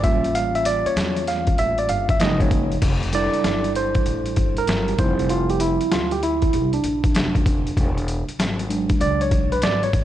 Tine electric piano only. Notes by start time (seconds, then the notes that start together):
0.03 G3 A#3 C#4 F4 E5
0.35 F5
0.55 E5
0.66 D5
0.86 C#5
1.28 F5
1.59 E5
1.79 D5
1.89 F5
2.10 E5
2.20 F3 G#3 A#3 D#4 D#5
2.41 C#5
3.12 G3 D4 E4 A4 D5
3.76 C5
4.58 A#4
4.98 F3 G3 C4 E4 C5
5.30 F4
5.50 G4
5.61 E4
5.92 F4
6.12 G4
6.23 E4
6.74 D4
8.69 F#3 G#3 D4
9.01 D5
9.21 C#5
9.52 B4
9.64 D5
9.83 C#5